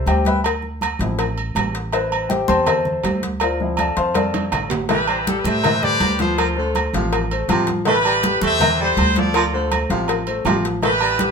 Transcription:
Already playing: G3 C4 B4
0.06 D2 G4 C5 E5 G5, cowbell, high conga, low agogo
0.25 B4 E5 G5 B5, cowbell, high conga
0.44 cowbell, high conga, low agogo
0.62 high conga
0.81 cowbell, high conga, low agogo
0.99 A1 F3 C4 E4, cowbell, high conga
1.19 cowbell, high conga, low agogo
1.38 high conga, low agogo
1.55 A1, cowbell, high conga, low timbale, low agogo
1.75 cowbell
1.92 E4 B4 C5 E5, cowbell, high conga, low agogo
2.12 high conga, low agogo
2.29 G4 C5 E5 G5, cowbell, high conga
2.47 E2 G3 B3 C4 C5 G5 A5 C6, high conga, low agogo
2.66 A4 C5 E5 A5, cowbell, high conga, low conga, low agogo
2.85 high conga, low conga
3.03 D2, cowbell, high conga, low timbale, low agogo
3.23 cowbell, high conga
3.40 F4 C5 D5 F5, cowbell, high conga, low agogo
3.60 F3 C4 E4, high conga
3.77 A4 D5 F5 A5, cowbell, high conga, low agogo
3.97 F2 C5 F5 A5 C6, cowbell, high conga
4.14 A4 D5 F5 A5, cowbell, high conga, low agogo
4.34 high conga, high timbale, low agogo
4.52 A1, cowbell, low conga, high timbale, low agogo
4.70 cowbell, low conga, low timbale
4.89 E3 A3 E4 G4 B4 E5, cowbell, high conga, low agogo
5.08 G3 C5, high conga, low agogo
5.18 B4
5.27 G3 G4 A4, cowbell, high conga
5.38 B4
5.44 A2 A3 G4 C5 E5, high conga, low agogo
5.64 E3 E4 E5, cowbell, high conga, low conga, low agogo
5.82 G3 G4 A4 B4 D5, high conga, low conga
6.00 D2, cowbell, high conga, low agogo
6.19 F3 F4 A4 C5 F5, cowbell, high conga
6.38 F3, cowbell, high conga, low agogo
6.56 D3 A3 A4 C5, high conga
6.75 cowbell, high conga, low agogo
6.93 A1 C3 F3 F4 F5, cowbell, high conga
7.13 cowbell, high conga, low agogo
7.31 A3 A4 C5, high conga, low agogo
7.48 A1 C3 F3 F4 F5, cowbell, high conga, low agogo
7.67 cowbell, high conga
7.85 E3 A3 E4 G4 B4 E5, cowbell, high conga, low agogo
8.05 G3, high conga, low agogo
8.23 G3 G4 A4, cowbell, high conga
8.41 E2 A3 G4 C5 E5, high conga, low agogo
8.60 E3 E4 E5, cowbell, high conga, low conga, low agogo
8.79 G3 E4 G4 A4 C5, high conga
8.97 D2, cowbell, high conga, low agogo
9.16 F3 F4 A4 D5 F5, cowbell, high conga
9.34 F3, cowbell, high conga, low agogo
9.53 D3 A3 A4 C5, high conga
9.71 cowbell, high conga, low agogo
9.90 A1 C3 F3 F4 F5, cowbell, high conga
10.08 cowbell, high conga, low agogo
10.27 A3 A4 C5, high conga, low agogo
10.45 A1 C3 F3 F4 F5, cowbell, high conga, low timbale, low agogo
10.65 cowbell
10.82 E3 A3 E4 G4 B4 E5, cowbell, high conga, low agogo
11.01 G3, high conga, low agogo
11.19 G3 G4 A4, cowbell, high conga

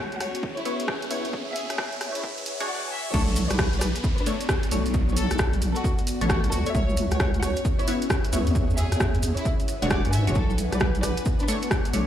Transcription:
Already playing: C#2 B3 C#4 F#4 G#4, riser
0.11 C#5, closed hi-hat
0.20 C#2 C#5 F#5, cross-stick, open hi-hat
0.35 E5, closed hi-hat
0.43 kick
0.57 E4 C#5, closed hi-hat
0.65 B3 E4 C#5, open hi-hat
0.80 closed hi-hat
0.88 kick, cross-stick
1.02 closed hi-hat
1.11 C#2 B3 E4 C#5, open hi-hat
1.25 E2, open hi-hat
1.33 E4, kick
1.49 B4
1.56 G#4 E5, open hi-hat
1.70 E2, cross-stick, closed hi-hat
1.78 kick, cross-stick
1.90 F#5, closed hi-hat
2.01 E2, cross-stick, open hi-hat
2.15 E4 C#5, closed hi-hat
2.23 kick
2.38 closed hi-hat
2.46 open hi-hat
2.60 E1 G#3 D4 F#4 C#5, closed hi-hat
2.68 D5 F#5
2.91 E5 G#5
3.13 B1 A3 B3 D4 A4 C#5, kick, crash, downlifter, maracas
3.27 maracas
3.36 open hi-hat, maracas
3.50 B1 F#4 B4 D5, cross-stick, closed hi-hat, maracas
3.58 kick, cross-stick, maracas
3.73 closed hi-hat, maracas
3.77 D5, maracas
3.81 B1 B4 D5, cross-stick, open hi-hat
3.96 closed hi-hat, maracas
4.04 kick, maracas
4.18 D4 B4, closed hi-hat, maracas
4.26 A3 D4 C#5, open hi-hat, maracas
4.41 closed hi-hat, maracas
4.49 kick, cross-stick, maracas
4.63 closed hi-hat, maracas
4.71 B1 A3 D4 C#5, open hi-hat, maracas
4.86 B1, open hi-hat, maracas
4.94 kick, maracas
5.09 maracas
5.17 A4 C#5, open hi-hat, maracas
5.31 B1, cross-stick, closed hi-hat, maracas
5.38 kick, cross-stick, maracas
5.53 closed hi-hat, maracas
5.62 B1, open hi-hat, maracas
5.75 F#4 A4, closed hi-hat, maracas
5.84 kick, maracas
5.98 closed hi-hat, maracas
6.07 open hi-hat, maracas
6.21 A1 A3 D4 C#5, closed hi-hat, maracas
6.29 F#4 A4, kick, cross-stick, maracas
6.44 B1, closed hi-hat, maracas
6.52 D2 F#4 A4, open hi-hat, maracas
6.66 A3 D4 C#5, closed hi-hat, maracas
6.75 C#2 C#4 C#5 E5, kick, maracas
6.89 G#4, maracas
6.97 open hi-hat, maracas
7.11 C#2 C#5 F#5, cross-stick, closed hi-hat, maracas
7.18 C#5, kick, cross-stick, maracas
7.34 closed hi-hat, maracas
7.42 C#2 C#5 F#5, cross-stick, open hi-hat, maracas
7.56 E5, closed hi-hat, maracas
7.65 kick, maracas
7.79 E4 C#5, closed hi-hat, maracas
7.87 B3 E4 C#5, open hi-hat, maracas
8.02 closed hi-hat, maracas
8.10 kick, cross-stick, maracas
8.24 closed hi-hat, maracas
8.33 C#2 B3 E4 C#5, open hi-hat, maracas
8.47 E2, open hi-hat, maracas
8.55 E4, kick, maracas
8.70 maracas
8.77 G#4 E5, open hi-hat, maracas
8.92 E2, cross-stick, closed hi-hat, maracas
9.00 B4, kick, cross-stick, maracas
9.14 F#5, closed hi-hat, maracas
9.22 E2, open hi-hat, maracas
9.37 E4 C#5 G#5, closed hi-hat, maracas
9.45 kick, maracas
9.60 closed hi-hat, maracas
9.68 open hi-hat, maracas
9.82 E1 G#3 D4 F#4 C#5, closed hi-hat, maracas
9.90 D5 F#5, kick, cross-stick, maracas
10.05 G#2, closed hi-hat, maracas
10.13 E5 G#5, open hi-hat, maracas
10.27 E1 G#3 D4 F#4 C#5, closed hi-hat, maracas
10.35 B1 B3 A4 C#5, kick, maracas
10.50 maracas
10.58 open hi-hat, maracas
10.72 B1 F#4 B4 D5, cross-stick, closed hi-hat, maracas
10.80 kick, cross-stick, maracas
10.95 closed hi-hat, maracas
11.03 B1 B4 D5, cross-stick, open hi-hat, maracas
11.17 closed hi-hat, maracas
11.25 kick, maracas
11.39 D4 B4, closed hi-hat, maracas
11.48 A3 D4 C#5, open hi-hat, maracas
11.62 closed hi-hat, maracas
11.71 kick, cross-stick, maracas
11.78 D5
11.85 closed hi-hat, maracas
11.93 B1 A3 D4 C#5, open hi-hat, maracas

